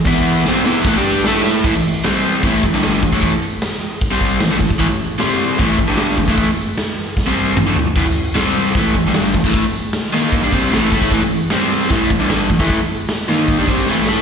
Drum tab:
CC |----------------|x---------------|----------------|----------------|
HH |----------------|--o-o-o-o-o-o-o-|o-o-o-o-o-o-o-o-|o-o-o-o-o-o-o-o-|
SD |o---o-o-o---o-o-|----o-------o--o|----o-------o---|----o-------o---|
T2 |----------------|----------------|----------------|----------------|
FT |----------------|----------------|----------------|----------------|
BD |o-------o-------|o-------o-o---oo|o-------o-o---oo|o-------o-o---oo|

CC |----------------|x---------------|----------------|----------------|
HH |o-o-o-o---------|o-o-o-o-o-o-o-o-|o-o-o-o-o-o-o-o-|o-o-o-o-o-o-o-o-|
SD |----o---o-------|----o-------o--o|----o-------o--o|----o-------o--o|
T2 |------------o---|----------------|----------------|----------------|
FT |--------------o-|----------------|----------------|----------------|
BD |o-------o-------|o-------o-o---oo|o-------o-o---oo|o-------o-o---oo|

CC |----------------|
HH |o-o-o-o-o-o-----|
SD |----o-------o-o-|
T2 |----------------|
FT |----------------|
BD |o-------o-o-----|